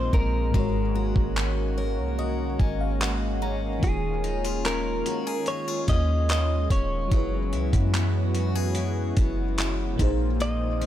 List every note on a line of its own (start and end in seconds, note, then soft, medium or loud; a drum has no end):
0.00 0.54 A#2 medium
0.00 7.08 D#3 medium
0.00 0.13 G#3 medium
0.00 0.50 G#3 medium
0.00 7.08 A#3 medium
0.00 0.62 C4 medium
0.00 0.52 D#4 medium
0.00 0.95 D#4 medium
0.00 0.51 F4 medium
0.00 0.10 G#4 medium
0.00 0.11 C5 medium
0.00 0.15 C5 medium
0.13 0.53 A#1 medium
0.13 0.54 G#3 medium
0.13 2.56 A#4 medium
0.13 kick medium
0.51 1.13 G#1 loud
0.51 3.77 G#2 medium
0.51 3.78 G#3 medium
0.51 10.86 G#3 medium
0.51 4.04 G#3 medium
0.51 7.08 C#4 medium
0.51 3.80 F#4 medium
0.51 kick medium
0.55 3.79 F#4 medium
0.55 3.80 A#4 medium
0.59 1.76 C#5 medium
0.95 2.17 F#4 medium
1.16 2.00 G#1 loud
1.16 kick medium
1.36 2.59 C#4 medium
1.36 clap medium
1.78 5.06 A#4 medium
1.78 2.16 C#5 medium
1.98 2.57 C2 medium
2.19 2.99 F#4 medium
2.19 2.57 D#5 medium
2.60 3.79 G#1 medium
2.60 3.41 C#4 medium
2.60 2.79 G#5 medium
2.60 kick medium
2.81 3.00 F5 medium
3.01 3.91 F#4 medium
3.01 3.39 F#5 medium
3.01 clap loud
3.42 4.27 C#4 medium
3.42 3.80 A#5 medium
3.79 5.02 D#1 loud
3.79 5.83 D#3 medium
3.79 7.12 D#3 medium
3.79 5.84 A#3 medium
3.79 5.85 F4 medium
3.79 kick loud
3.79 closed hi-hat medium
3.83 7.09 F4 medium
3.83 4.66 G#4 medium
3.83 5.86 G#4 medium
3.83 5.87 C#5 medium
4.24 4.45 D#4 medium
4.24 closed hi-hat soft
4.44 5.47 F4 medium
4.44 closed hi-hat medium
4.65 5.88 C#4 medium
4.65 5.50 A#4 medium
4.65 clap medium
4.65 closed hi-hat medium
5.06 5.27 F#4 medium
5.06 closed hi-hat medium
5.27 7.20 G#4 medium
5.46 5.68 D#4 medium
5.46 5.86 C#5 loud
5.46 closed hi-hat medium
5.68 6.28 F4 medium
5.87 6.67 D#2 loud
5.87 7.11 D#3 soft
5.87 7.11 A#3 soft
5.87 6.70 C#4 medium
5.87 7.12 F4 soft
5.87 7.12 G#4 soft
5.87 6.29 D#5 loud
5.87 kick medium
5.87 closed hi-hat medium
5.91 7.13 C#5 medium
6.29 7.20 F4 medium
6.29 6.71 D#5 medium
6.29 clap loud
6.29 closed hi-hat medium
6.70 7.10 D#1 loud
6.70 7.93 C#4 medium
6.70 9.14 C#5 medium
6.70 kick medium
6.70 closed hi-hat medium
7.08 7.54 F#1 loud
7.08 9.96 E3 medium
7.08 9.93 F#3 medium
7.08 10.08 F#3 medium
7.08 9.96 B3 medium
7.08 9.94 C#4 medium
7.08 9.96 C#4 medium
7.08 9.96 F#4 medium
7.08 kick medium
7.08 closed hi-hat medium
7.12 9.95 E4 medium
7.12 9.96 G#4 medium
7.12 9.97 B4 medium
7.53 7.72 C#2 medium
7.53 8.75 E4 medium
7.53 closed hi-hat soft
7.73 9.13 F#2 medium
7.73 kick loud
7.73 closed hi-hat medium
7.94 9.16 B3 medium
7.94 clap loud
7.94 closed hi-hat medium
8.35 8.55 F#4 medium
8.35 closed hi-hat medium
8.55 10.08 G#4 medium
8.75 9.57 E4 medium
8.75 closed hi-hat medium
9.17 9.96 F#1 loud
9.17 10.08 B3 medium
9.17 kick medium
9.17 closed hi-hat medium
9.58 10.08 E4 medium
9.58 clap loud
9.58 closed hi-hat medium
9.96 10.86 A#1 loud
9.96 10.86 A#2 medium
9.96 10.39 A#2 medium
9.96 10.86 D#3 medium
9.96 10.86 A#3 medium
9.96 10.86 C4 medium
9.96 10.86 F4 medium
9.96 kick loud
10.00 10.86 D#4 medium
10.00 10.86 G#4 medium
10.00 closed hi-hat medium
10.04 10.86 C5 medium
10.40 10.86 A#2 medium
10.40 10.86 D#5 loud
10.40 closed hi-hat soft
10.81 10.86 C4 medium
10.81 closed hi-hat soft